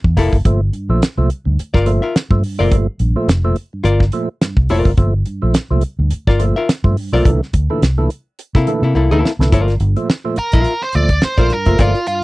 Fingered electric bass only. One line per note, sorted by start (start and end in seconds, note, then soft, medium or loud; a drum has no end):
0.04 0.15 E2 medium
0.17 0.30 F1 medium
0.32 0.43 F#1 medium
0.45 0.69 G1 loud
0.89 1.00 A#1 loud
1.18 1.28 C2 medium
1.46 1.56 D2 medium
1.59 muted fingered electric bass stroke soft
1.75 1.98 G1 medium
2.31 2.41 G2 medium
2.60 2.72 F#1 medium
2.72 2.85 G1 loud
3.00 3.13 A#1 medium
3.28 3.52 F1 loud
3.84 4.09 G1 loud
4.57 4.68 C2 medium
4.70 4.83 F1 medium
4.85 4.96 F#1 medium
4.98 5.22 G1 loud
5.43 5.53 A#1 medium
5.70 5.81 C2 medium
5.99 6.09 D2 medium
6.12 muted fingered electric bass stroke soft
6.27 6.51 G1 medium
6.84 6.95 G2 loud
7.13 7.23 B1 medium
7.25 7.39 C2 medium
7.53 7.67 D2 medium
7.82 8.06 C2 medium
8.55 8.65 C3 loud
8.82 8.93 C3 medium
8.95 9.08 C2 medium
9.10 9.21 D2 medium
9.39 9.50 C2 medium
9.52 9.76 G1 loud
9.80 9.94 G1 loud
10.38 muted fingered electric bass stroke soft
10.54 10.64 A#1 medium
10.95 11.19 D2 medium
11.38 11.49 A#1 medium
11.67 11.77 F#1 medium
11.79 11.92 G1 loud